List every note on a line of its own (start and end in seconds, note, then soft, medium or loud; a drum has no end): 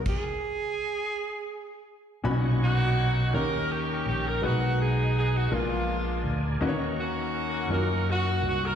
0.06 1.86 G#4 medium
0.06 kick medium
0.06 crash medium
2.24 3.30 B1 medium
2.24 2.99 A#2 medium
2.24 3.30 B2 medium
2.24 2.99 C#4 medium
2.24 2.31 D4 medium
2.24 2.99 F#4 medium
2.24 3.33 C#5 medium
2.24 4.41 D#5 medium
2.24 3.33 F#5 soft
2.24 2.99 B5 medium
2.24 4.41 C#6 medium
2.31 3.02 D#4 medium
2.63 3.31 A#3 medium
2.63 3.31 D#4 medium
2.63 3.31 F#4 medium
3.33 4.02 D#2 medium
3.33 4.39 D#3 soft
3.33 4.08 A#3 medium
3.33 4.08 C#4 medium
3.33 4.39 C#4 medium
3.33 4.08 D#4 medium
3.33 4.08 G4 medium
3.33 3.71 G4 medium
3.33 4.42 A#4 medium
3.33 3.70 A#4 loud
3.33 4.09 C#5 medium
3.33 4.42 G5 medium
3.72 4.08 G4 medium
4.06 4.40 A#1 medium
4.06 4.25 G4 medium
4.26 4.44 A#4 medium
4.42 5.48 B1 medium
4.42 5.48 B2 medium
4.42 5.17 G#3 medium
4.42 5.17 B3 medium
4.42 5.17 D#4 medium
4.42 5.50 D#4 medium
4.42 5.17 F#4 medium
4.42 4.81 F#4 medium
4.42 5.51 G#4 medium
4.42 5.18 B4 medium
4.42 5.51 D#5 medium
4.42 5.51 F#5 medium
4.82 5.15 G#4 medium
5.19 5.34 G#4 medium
5.37 5.54 F#4 medium
5.51 6.21 A#1 medium
5.51 6.57 A#2 medium
5.51 6.26 G#3 medium
5.51 6.59 G#3 medium
5.51 6.26 B3 medium
5.51 6.27 D4 soft
5.51 6.59 D4 medium
5.51 6.27 F4 medium
5.51 6.35 F4 medium
5.51 6.27 A#4 medium
5.51 8.75 A#4 medium
5.51 6.61 D5 soft
5.51 6.61 G#5 medium
6.24 6.58 D2 medium
6.61 7.66 D#2 medium
6.61 7.67 D#3 medium
6.61 7.36 A#3 medium
6.61 7.36 C#4 medium
6.61 7.36 D#4 medium
6.61 7.36 F#4 medium
6.61 6.68 B4 medium
6.61 8.75 D#5 medium
6.61 8.75 F#5 medium
6.61 8.75 C#6 medium
6.68 7.40 C#5 medium
7.00 8.04 A#3 medium
7.00 8.04 C#4 medium
7.00 7.68 F#4 medium
7.69 8.39 F#2 medium
7.69 8.45 A#3 medium
7.69 8.45 C#4 medium
7.69 8.45 D#4 medium
7.69 7.77 F4 soft
7.69 8.45 A#4 medium
7.73 8.48 F#4 soft
7.73 8.08 A#4 loud
8.11 8.45 F#4 medium
8.42 8.75 C2 medium
8.48 8.63 F#4 medium
8.65 8.75 A#4 medium